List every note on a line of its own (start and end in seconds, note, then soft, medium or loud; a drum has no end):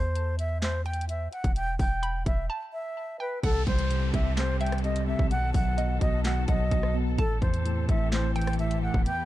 0.00 1.29 E2 loud
0.00 0.36 C5 medium
0.00 0.82 A5 loud
0.16 closed hi-hat medium
0.39 0.58 E5 medium
0.39 closed hi-hat medium
0.62 0.82 C5 medium
0.62 snare loud
0.62 clap loud
0.62 closed hi-hat medium
0.86 1.05 G5 medium
0.86 1.52 G5 medium
0.86 closed hi-hat soft
0.93 closed hi-hat medium
1.01 closed hi-hat medium
1.09 1.28 E5 medium
1.09 closed hi-hat medium
1.32 1.52 F#5 medium
1.32 closed hi-hat soft
1.44 1.78 E1 loud
1.44 kick medium
1.44 closed hi-hat medium
1.56 1.75 G5 loud
1.56 closed hi-hat medium
1.79 2.24 E1 loud
1.79 2.23 G5 medium
1.79 kick medium
1.79 open hi-hat medium
2.03 2.47 B5 medium
2.03 closed hi-hat medium
2.26 2.49 E1 loud
2.26 2.46 E5 medium
2.26 kick loud
2.26 closed hi-hat medium
2.50 3.16 A5 loud
2.73 3.17 E5 medium
3.20 3.39 B4 medium
3.20 3.42 G5 medium
3.43 3.66 C2 loud
3.43 3.89 C3 medium
3.43 5.29 E3 medium
3.43 5.29 C4 medium
3.43 5.29 G4 medium
3.43 9.02 A4 medium
3.43 3.63 A4 loud
3.43 4.57 F#5 medium
3.43 kick loud
3.43 closed hi-hat medium
3.43 downlifter medium
3.67 4.12 C2 loud
3.67 4.59 G3 medium
3.67 4.11 C5 medium
3.67 kick medium
3.67 closed hi-hat soft
3.79 closed hi-hat medium
3.90 4.13 C3 medium
3.90 closed hi-hat medium
4.14 5.15 C2 loud
4.14 4.36 C3 medium
4.14 4.33 E5 medium
4.14 kick loud
4.14 closed hi-hat medium
4.37 4.83 C3 medium
4.37 4.57 C5 medium
4.37 snare loud
4.37 clap loud
4.37 closed hi-hat medium
4.60 5.31 G3 medium
4.60 5.27 E5 medium
4.60 4.80 G5 medium
4.60 closed hi-hat medium
4.67 closed hi-hat medium
4.72 cross-stick loud
4.72 closed hi-hat medium
4.78 closed hi-hat medium
4.84 5.31 C3 medium
4.84 5.03 D#5 medium
4.84 closed hi-hat soft
4.96 closed hi-hat medium
5.07 5.31 C4 medium
5.07 5.27 E5 medium
5.19 5.53 B1 loud
5.19 kick loud
5.31 5.77 B2 medium
5.31 7.17 D#3 medium
5.31 7.17 B3 medium
5.31 7.17 F#4 medium
5.31 5.50 F#5 loud
5.31 closed hi-hat medium
5.54 5.99 B1 loud
5.54 6.47 F#3 medium
5.54 5.98 F#5 medium
5.54 kick loud
5.54 open hi-hat medium
5.78 6.00 B2 medium
5.78 6.44 D#5 medium
5.78 closed hi-hat medium
6.01 6.46 B1 loud
6.01 6.24 B2 medium
6.01 6.21 D#5 medium
6.01 kick loud
6.01 closed hi-hat medium
6.25 6.70 B2 medium
6.25 6.44 F#5 medium
6.25 snare loud
6.25 clap loud
6.25 closed hi-hat medium
6.48 6.71 B1 loud
6.48 7.18 F#3 medium
6.48 6.95 D#5 medium
6.48 7.14 F#5 medium
6.48 kick medium
6.48 closed hi-hat medium
6.71 7.08 B1 loud
6.71 7.18 B2 medium
6.71 kick medium
6.71 closed hi-hat medium
6.83 cross-stick loud
6.95 7.18 B3 medium
7.07 7.18 C2 loud
7.18 7.41 A1 loud
7.18 7.64 A2 medium
7.18 9.25 E3 medium
7.18 9.04 C4 medium
7.18 9.25 G4 medium
7.18 7.38 A4 loud
7.18 8.32 A5 loud
7.18 kick loud
7.18 closed hi-hat medium
7.42 7.87 E2 loud
7.42 8.35 E3 medium
7.42 7.86 C5 medium
7.42 kick medium
7.42 closed hi-hat soft
7.54 closed hi-hat medium
7.65 7.87 A2 medium
7.65 closed hi-hat medium
7.89 8.90 A1 loud
7.89 8.11 A2 medium
7.89 8.08 E5 medium
7.89 kick loud
7.89 closed hi-hat medium
8.12 8.58 A2 medium
8.12 8.32 C5 medium
8.12 snare loud
8.12 clap loud
8.12 closed hi-hat medium
8.36 9.06 E3 medium
8.36 8.55 G5 medium
8.36 9.02 G5 medium
8.36 closed hi-hat medium
8.42 closed hi-hat medium
8.47 cross-stick loud
8.47 closed hi-hat medium
8.53 closed hi-hat medium
8.59 9.06 A2 medium
8.59 8.78 E5 medium
8.59 closed hi-hat soft
8.71 closed hi-hat medium
8.82 9.06 A3 medium
8.82 9.02 F#5 medium
8.94 9.05 E1 loud
8.94 kick loud
9.06 9.25 E2 loud
9.06 9.25 B3 medium
9.06 9.25 B4 medium
9.06 9.25 G5 loud
9.06 closed hi-hat medium